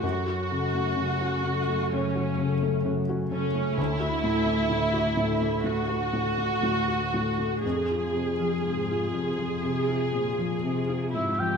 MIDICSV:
0, 0, Header, 1, 6, 480
1, 0, Start_track
1, 0, Tempo, 937500
1, 17, Time_signature, 4, 2, 24, 8
1, 2897, Tempo, 967742
1, 3377, Tempo, 1003344
1, 5743, End_track
2, 0, Start_track
2, 0, Title_t, "Oboe"
2, 0, Program_c, 0, 68
2, 5538, Note_on_c, 0, 76, 48
2, 5658, Note_on_c, 0, 79, 64
2, 5666, Note_off_c, 0, 76, 0
2, 5743, Note_off_c, 0, 79, 0
2, 5743, End_track
3, 0, Start_track
3, 0, Title_t, "Harp"
3, 0, Program_c, 1, 46
3, 0, Note_on_c, 1, 69, 29
3, 4, Note_on_c, 1, 42, 36
3, 130, Note_on_c, 1, 66, 29
3, 245, Note_off_c, 1, 69, 0
3, 251, Note_on_c, 1, 69, 36
3, 376, Note_on_c, 1, 61, 31
3, 489, Note_off_c, 1, 66, 0
3, 495, Note_on_c, 1, 66, 33
3, 613, Note_off_c, 1, 61, 0
3, 619, Note_on_c, 1, 61, 35
3, 736, Note_off_c, 1, 69, 0
3, 742, Note_on_c, 1, 69, 42
3, 856, Note_off_c, 1, 61, 0
3, 862, Note_on_c, 1, 61, 31
3, 984, Note_on_c, 1, 49, 38
3, 1099, Note_off_c, 1, 66, 0
3, 1106, Note_on_c, 1, 66, 37
3, 1218, Note_off_c, 1, 69, 0
3, 1224, Note_on_c, 1, 69, 38
3, 1338, Note_off_c, 1, 61, 0
3, 1345, Note_on_c, 1, 61, 33
3, 1457, Note_off_c, 1, 66, 0
3, 1463, Note_on_c, 1, 66, 39
3, 1568, Note_off_c, 1, 61, 0
3, 1574, Note_on_c, 1, 61, 36
3, 1691, Note_off_c, 1, 69, 0
3, 1697, Note_on_c, 1, 69, 41
3, 1807, Note_off_c, 1, 61, 0
3, 1813, Note_on_c, 1, 61, 36
3, 1931, Note_on_c, 1, 50, 42
3, 1949, Note_off_c, 1, 42, 0
3, 1953, Note_off_c, 1, 61, 0
3, 1955, Note_off_c, 1, 49, 0
3, 2045, Note_off_c, 1, 66, 0
3, 2051, Note_on_c, 1, 66, 39
3, 2163, Note_off_c, 1, 69, 0
3, 2169, Note_on_c, 1, 69, 41
3, 2286, Note_on_c, 1, 62, 38
3, 2402, Note_off_c, 1, 66, 0
3, 2408, Note_on_c, 1, 66, 37
3, 2524, Note_off_c, 1, 62, 0
3, 2530, Note_on_c, 1, 62, 39
3, 2647, Note_off_c, 1, 69, 0
3, 2653, Note_on_c, 1, 69, 43
3, 2767, Note_off_c, 1, 62, 0
3, 2773, Note_on_c, 1, 62, 36
3, 2892, Note_on_c, 1, 57, 38
3, 3004, Note_off_c, 1, 66, 0
3, 3010, Note_on_c, 1, 66, 38
3, 3123, Note_off_c, 1, 69, 0
3, 3129, Note_on_c, 1, 69, 38
3, 3244, Note_off_c, 1, 62, 0
3, 3250, Note_on_c, 1, 62, 33
3, 3370, Note_off_c, 1, 66, 0
3, 3376, Note_on_c, 1, 66, 34
3, 3486, Note_off_c, 1, 62, 0
3, 3492, Note_on_c, 1, 62, 34
3, 3608, Note_off_c, 1, 69, 0
3, 3613, Note_on_c, 1, 69, 32
3, 3732, Note_off_c, 1, 62, 0
3, 3738, Note_on_c, 1, 62, 31
3, 3858, Note_on_c, 1, 53, 38
3, 3877, Note_off_c, 1, 50, 0
3, 3878, Note_off_c, 1, 57, 0
3, 3878, Note_off_c, 1, 69, 0
3, 3880, Note_off_c, 1, 62, 0
3, 3880, Note_off_c, 1, 66, 0
3, 3982, Note_on_c, 1, 65, 29
3, 4100, Note_on_c, 1, 72, 31
3, 4214, Note_off_c, 1, 65, 0
3, 4219, Note_on_c, 1, 65, 30
3, 4342, Note_on_c, 1, 60, 27
3, 4454, Note_off_c, 1, 65, 0
3, 4460, Note_on_c, 1, 65, 30
3, 4572, Note_off_c, 1, 72, 0
3, 4578, Note_on_c, 1, 72, 31
3, 4689, Note_off_c, 1, 65, 0
3, 4695, Note_on_c, 1, 65, 25
3, 4806, Note_off_c, 1, 60, 0
3, 4812, Note_on_c, 1, 60, 29
3, 4924, Note_off_c, 1, 65, 0
3, 4930, Note_on_c, 1, 65, 27
3, 5042, Note_off_c, 1, 72, 0
3, 5048, Note_on_c, 1, 72, 31
3, 5161, Note_off_c, 1, 65, 0
3, 5167, Note_on_c, 1, 65, 27
3, 5282, Note_off_c, 1, 60, 0
3, 5287, Note_on_c, 1, 60, 30
3, 5402, Note_off_c, 1, 65, 0
3, 5408, Note_on_c, 1, 65, 27
3, 5523, Note_off_c, 1, 72, 0
3, 5529, Note_on_c, 1, 72, 27
3, 5645, Note_off_c, 1, 65, 0
3, 5650, Note_on_c, 1, 65, 30
3, 5724, Note_off_c, 1, 53, 0
3, 5743, Note_off_c, 1, 60, 0
3, 5743, Note_off_c, 1, 65, 0
3, 5743, Note_off_c, 1, 72, 0
3, 5743, End_track
4, 0, Start_track
4, 0, Title_t, "Viola section"
4, 0, Program_c, 2, 48
4, 11, Note_on_c, 2, 66, 61
4, 962, Note_off_c, 2, 66, 0
4, 982, Note_on_c, 2, 61, 55
4, 1463, Note_off_c, 2, 61, 0
4, 1699, Note_on_c, 2, 61, 61
4, 1919, Note_off_c, 2, 61, 0
4, 1933, Note_on_c, 2, 64, 74
4, 2891, Note_on_c, 2, 66, 63
4, 2894, Note_off_c, 2, 64, 0
4, 3857, Note_on_c, 2, 68, 57
4, 3858, Note_off_c, 2, 66, 0
4, 5517, Note_off_c, 2, 68, 0
4, 5532, Note_on_c, 2, 64, 40
4, 5647, Note_off_c, 2, 64, 0
4, 5652, Note_on_c, 2, 67, 52
4, 5743, Note_off_c, 2, 67, 0
4, 5743, End_track
5, 0, Start_track
5, 0, Title_t, "Felt piano"
5, 0, Program_c, 3, 0
5, 0, Control_c, 3, 64, 127
5, 16, Note_on_c, 3, 42, 37
5, 27, Control_c, 3, 64, 0
5, 122, Control_c, 3, 64, 127
5, 135, Note_on_c, 3, 66, 27
5, 264, Note_on_c, 3, 49, 28
5, 330, Note_off_c, 3, 66, 0
5, 377, Note_on_c, 3, 57, 32
5, 454, Note_off_c, 3, 49, 0
5, 493, Note_on_c, 3, 49, 34
5, 572, Note_off_c, 3, 57, 0
5, 618, Note_on_c, 3, 66, 30
5, 690, Note_off_c, 3, 49, 0
5, 734, Note_on_c, 3, 49, 32
5, 813, Note_off_c, 3, 66, 0
5, 866, Note_on_c, 3, 57, 33
5, 932, Note_off_c, 3, 49, 0
5, 964, Note_off_c, 3, 42, 0
5, 991, Note_on_c, 3, 49, 33
5, 1059, Note_off_c, 3, 57, 0
5, 1104, Note_on_c, 3, 66, 33
5, 1181, Note_off_c, 3, 49, 0
5, 1221, Note_on_c, 3, 49, 38
5, 1297, Note_off_c, 3, 66, 0
5, 1342, Note_on_c, 3, 57, 32
5, 1414, Note_off_c, 3, 49, 0
5, 1457, Note_on_c, 3, 49, 39
5, 1533, Note_off_c, 3, 57, 0
5, 1583, Note_on_c, 3, 66, 40
5, 1649, Note_off_c, 3, 49, 0
5, 1694, Note_on_c, 3, 49, 39
5, 1771, Note_off_c, 3, 66, 0
5, 1814, Note_on_c, 3, 57, 37
5, 1886, Note_off_c, 3, 49, 0
5, 1932, Note_on_c, 3, 38, 49
5, 1934, Note_off_c, 3, 57, 0
5, 1945, Control_c, 3, 64, 0
5, 2024, Control_c, 3, 64, 127
5, 2048, Note_on_c, 3, 66, 34
5, 2170, Note_on_c, 3, 45, 35
5, 2242, Note_off_c, 3, 66, 0
5, 2284, Note_on_c, 3, 57, 38
5, 2363, Note_off_c, 3, 45, 0
5, 2403, Note_on_c, 3, 45, 37
5, 2481, Note_off_c, 3, 57, 0
5, 2525, Note_on_c, 3, 66, 36
5, 2601, Note_off_c, 3, 45, 0
5, 2647, Note_on_c, 3, 45, 38
5, 2722, Note_off_c, 3, 66, 0
5, 2773, Note_on_c, 3, 57, 32
5, 2844, Note_off_c, 3, 45, 0
5, 2873, Note_off_c, 3, 38, 0
5, 2887, Note_on_c, 3, 45, 34
5, 2966, Note_off_c, 3, 57, 0
5, 3015, Note_on_c, 3, 66, 38
5, 3081, Note_off_c, 3, 45, 0
5, 3132, Note_on_c, 3, 45, 34
5, 3205, Note_off_c, 3, 66, 0
5, 3254, Note_on_c, 3, 57, 30
5, 3326, Note_off_c, 3, 45, 0
5, 3379, Note_on_c, 3, 45, 36
5, 3448, Note_off_c, 3, 57, 0
5, 3498, Note_on_c, 3, 66, 30
5, 3569, Note_off_c, 3, 45, 0
5, 3623, Note_on_c, 3, 45, 30
5, 3690, Note_off_c, 3, 66, 0
5, 3743, Note_on_c, 3, 57, 30
5, 3814, Note_off_c, 3, 45, 0
5, 3862, Note_off_c, 3, 57, 0
5, 3869, Control_c, 3, 64, 0
5, 3870, Note_on_c, 3, 41, 40
5, 3954, Control_c, 3, 64, 127
5, 3988, Note_on_c, 3, 65, 27
5, 4103, Note_on_c, 3, 48, 30
5, 4180, Note_off_c, 3, 65, 0
5, 4228, Note_on_c, 3, 53, 29
5, 4297, Note_off_c, 3, 48, 0
5, 4350, Note_on_c, 3, 48, 26
5, 4418, Note_off_c, 3, 53, 0
5, 4469, Note_on_c, 3, 65, 26
5, 4538, Note_off_c, 3, 48, 0
5, 4582, Note_on_c, 3, 48, 29
5, 4656, Note_off_c, 3, 65, 0
5, 4695, Note_on_c, 3, 53, 23
5, 4772, Note_off_c, 3, 48, 0
5, 4806, Note_off_c, 3, 41, 0
5, 4814, Note_on_c, 3, 48, 29
5, 4888, Note_off_c, 3, 53, 0
5, 4936, Note_on_c, 3, 65, 26
5, 5007, Note_off_c, 3, 48, 0
5, 5050, Note_on_c, 3, 48, 28
5, 5128, Note_off_c, 3, 65, 0
5, 5176, Note_on_c, 3, 53, 26
5, 5245, Note_off_c, 3, 48, 0
5, 5297, Note_on_c, 3, 48, 28
5, 5368, Note_off_c, 3, 53, 0
5, 5418, Note_on_c, 3, 65, 29
5, 5490, Note_off_c, 3, 48, 0
5, 5546, Note_on_c, 3, 48, 27
5, 5611, Note_off_c, 3, 65, 0
5, 5660, Note_on_c, 3, 53, 27
5, 5733, Note_off_c, 3, 48, 0
5, 5743, Note_off_c, 3, 53, 0
5, 5743, End_track
6, 0, Start_track
6, 0, Title_t, "Cello section"
6, 0, Program_c, 4, 48
6, 13, Note_on_c, 4, 42, 37
6, 1932, Note_on_c, 4, 38, 52
6, 1934, Note_off_c, 4, 42, 0
6, 3354, Note_off_c, 4, 38, 0
6, 3375, Note_on_c, 4, 38, 43
6, 3850, Note_off_c, 4, 38, 0
6, 3863, Note_on_c, 4, 41, 38
6, 4290, Note_off_c, 4, 41, 0
6, 4339, Note_on_c, 4, 44, 42
6, 4563, Note_off_c, 4, 44, 0
6, 4579, Note_on_c, 4, 41, 37
6, 4817, Note_on_c, 4, 48, 43
6, 4818, Note_off_c, 4, 41, 0
6, 5056, Note_off_c, 4, 48, 0
6, 5057, Note_on_c, 4, 46, 43
6, 5297, Note_off_c, 4, 46, 0
6, 5297, Note_on_c, 4, 48, 43
6, 5538, Note_off_c, 4, 48, 0
6, 5539, Note_on_c, 4, 44, 39
6, 5743, Note_off_c, 4, 44, 0
6, 5743, End_track
0, 0, End_of_file